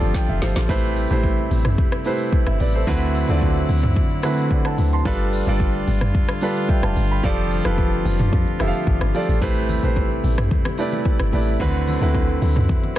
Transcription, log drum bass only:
0.02 G1
0.29 F1
0.42 G1
0.56 A1
0.69 A1
1.11 A1
1.51 A1
2.47 G1
2.60 A1
2.87 D2
3.29 D2
3.69 D2
4.78 D2
5.05 G1
5.47 G1
5.87 G1
6.83 F1
6.96 G1
7.24 F1
7.65 F1
8.05 F1
8.33 F2
8.60 F1
8.87 G1
9.01 G1
9.29 A1
9.42 A1
9.83 A1
10.24 A1
11.20 G1
11.33 A1
11.60 D2
12.01 D2
12.42 D2

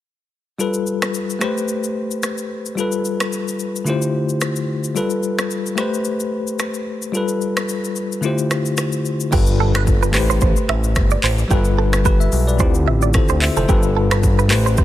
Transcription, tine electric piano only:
0.58 G3 F4 A4 B4
1.39 A3 G4 B4
1.44 C5
2.75 G3 F4 A4
2.80 B4
3.85 D3 A3 E4 F4 G4
3.90 C5
4.95 G3 F4 A4 B4
5.75 A3 G4 B4
5.80 C5
7.12 G3 F4 A4
7.17 B4
8.21 D3 A3 E4 F4 G4
8.26 C5
9.31 G3 F4 A4 B4
10.12 A3 G4 B4
10.17 C5
11.48 G3 F4 A4
11.53 B4
12.05 G4 B4
12.20 E5
12.47 B4 D5
12.57 D3 C4 E4 F4
12.62 G4
13.14 A4 C5
13.42 C5 E5
13.57 A4 C5
13.68 G3 F4 A4 B4
14.48 A3 G4 B4
14.53 C5

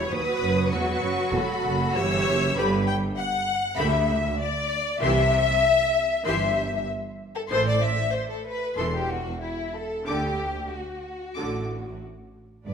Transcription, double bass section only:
Already playing: E1
0.11 D#2
0.41 F#1
0.72 E1
1.02 F#1
1.32 E1
1.64 F#1
1.96 G1
2.27 F#1
2.57 G1
3.78 D2
5.02 C2
6.26 G1
7.50 A1
8.77 E1
10.07 D2
11.37 A1
12.67 G1

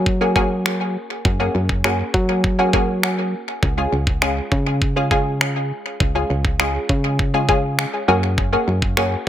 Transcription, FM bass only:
Already playing: F#3
1.25 F#2
1.55 F#2
2.14 F#3
3.63 C#2
3.92 C#2
4.52 C#3
6.00 C#2
6.30 C#2
6.89 C#3
8.08 F#2
8.68 F#2

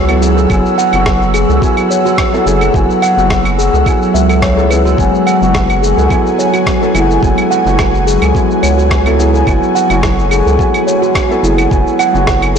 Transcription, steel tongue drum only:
Already playing: F#4
0.22 G#4
0.37 A4
0.50 F#4
0.78 F#5
1.34 G#4
1.49 A4
1.62 F#4
1.90 C#5
2.05 F#4
2.46 G#4
2.61 A4
2.75 F#4
3.02 F#5
3.58 G#4
3.73 A4
3.86 F#4
4.14 E5
4.29 A4
4.42 C#5
4.57 G#4
4.70 B4
4.85 F#4
4.98 F#4
5.27 F#5
5.82 G#4
5.97 A4
6.11 F#4
6.39 C#5
6.53 F#4
6.95 E4
7.10 A4
7.23 F#4
7.51 F#5
8.07 G#4
8.22 A4
8.35 F#4
8.63 C#5
8.78 F#4
9.19 E4
9.34 A4
9.47 F#4
9.75 F#5
10.31 G#4
10.46 A4
10.59 F#4
10.87 C#5
11.02 F#4
11.44 E4
11.58 A4
11.71 F#4
11.99 F#5
12.56 G#4

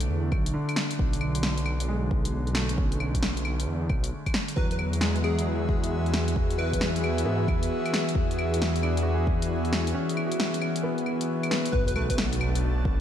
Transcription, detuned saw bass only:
0.10 E2
0.32 B1
0.99 B1
2.78 B1
3.67 E2
3.89 B1
4.57 E2
6.36 E2
7.25 G#2
7.48 E2
8.15 E2
11.73 B1

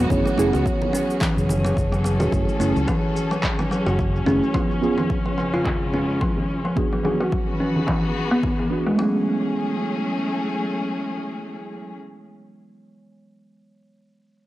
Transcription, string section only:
Already playing: B3 F#4 G#4
0.11 F#3
0.76 C#4
1.58 A4
4.55 F2
4.73 C#3
5.56 G#3 F4
6.77 E3
7.26 F#4
7.46 B3
7.73 G#4
8.98 F#3
9.08 C#4
9.17 G#4
9.24 A3

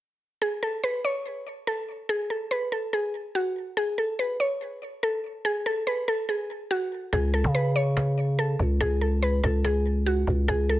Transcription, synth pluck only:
0.42 G#4
0.63 A4
0.84 B4
1.05 C#5
1.67 A4
2.09 G#4
2.30 A4
2.51 B4
2.72 A4
2.93 G#4
3.35 F#4
3.77 G#4
3.98 A4
4.19 B4
4.40 C#5
5.03 A4
5.45 G#4
5.66 A4
5.87 B4
6.08 A4
6.29 G#4
6.71 F#4
7.13 G#4
7.34 A4
7.55 B4
7.76 C#5
8.39 A4
8.81 G#4
9.01 A4
9.22 B4
9.44 A4
9.65 G#4
10.06 F#4
10.48 G#4
10.69 A4

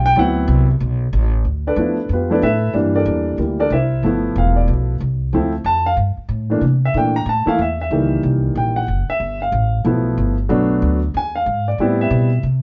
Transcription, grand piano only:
0.06 G5
0.17 F#3 B3 C4 E4 F#5
1.67 D4 A4 B4 D5
1.77 F3 A3 B3 E4
2.13 B3 F4 G4 B4
2.30 F3 A3 B3 D4 E4 A4 B4 D5
2.43 E4 A4 B4 E5
2.73 E3 G3 A#3 D4
2.96 D4 A4 A#4 D5
3.39 A#3 E4 G4 A#4
3.60 D4 A4 A#4 D5
3.72 E4 A#4 C5 E5
4.04 F3 A3 B3 E4
4.38 F5
4.56 D5
5.33 F3 A3 C4 E4
5.66 A5
5.86 F5
6.50 E3 A3 A#3 D4
6.85 E5
6.95 E3 A3 A#3 D4 G5
7.16 A#5
7.29 A5
7.46 E3 A3 A#3 E4 F5
7.62 E5
7.81 E5
7.91 D#3 E3 G3 A#3
8.57 G5
8.76 F#5
9.10 E5
9.42 F5
9.85 F3 A3 B3 E4
10.49 F#3 A3 B3 D4
11.17 G#5
11.36 F5
11.68 D5
11.80 G3 B3 C4 E4
12.01 E5

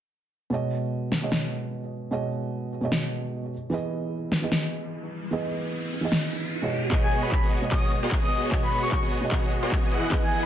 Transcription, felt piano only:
0.50 B2 G#3 C#5 D#5
1.22 B2 G#3 C#5 D#5
2.11 B2 G#3 C#5 D#5
2.81 B2 G#3 C#5 D#5
3.70 E3 B3 G#4 D#5
4.42 E3 B3 G#4 D#5
5.31 E3 B3 G#4 D#5
6.01 E3 B3 G#4
6.05 D#5
6.62 B2 G#3 C#5 D#5
6.90 B2 G#3 C#5 D#5
7.62 B2 G#3 C#5 D#5
8.51 B2 G#3 C#5 D#5
9.21 B2 G#3 C#5 D#5
10.10 E3 B3 G#4
10.14 D#5

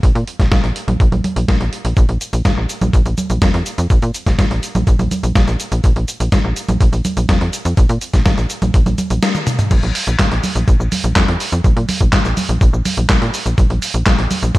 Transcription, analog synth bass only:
0.03 A#1
0.15 A#2
0.40 A#1
0.52 A#1
0.64 A#1
0.88 A#1
1.00 A#1
1.12 A#1
1.36 A#1
1.48 A#1
1.61 A#1
1.85 A#1
1.97 A#1
2.09 A#1
2.33 A#1
2.45 G#1
2.57 A#1
2.81 A#1
2.93 A#1
3.06 A#1
3.30 A#1
3.42 F2
3.54 F2
3.78 F2
3.90 A#1
4.02 A#2
4.26 A#1
4.39 G#1
4.51 A#1
4.75 A#1
4.87 A#1
4.99 A#1
5.23 A#1
5.35 A#1
5.48 A#1
5.72 A#1
5.84 A#1
5.96 A#1
6.20 A#1
6.32 G#1
6.44 A#1
6.69 A#1
6.81 A#1
6.93 A#1
7.17 A#1
7.29 F2
7.41 F2
7.65 F2
7.77 A#1
7.89 A#2
8.14 A#1
8.26 G#1
8.38 A#1
8.62 A#1
8.74 A#1
8.86 A#1
9.11 A#1
9.71 A#1
9.83 A#1
10.07 A#1
10.19 G#1
10.31 A#1
10.56 A#1
10.68 A#1
10.80 A#1
11.04 A#1
11.16 F2
11.28 F2
11.52 F2
11.64 A#1
11.77 A#2
12.01 A#1
12.13 G#1
12.25 A#1
12.49 A#1
12.61 A#1
12.73 A#1
12.97 A#1
13.10 A#1
13.22 A#2
13.46 A#1
13.58 A#1
13.70 A#1
13.94 A#1
14.06 A#1
14.18 A#1
14.43 A#1
14.55 A#1

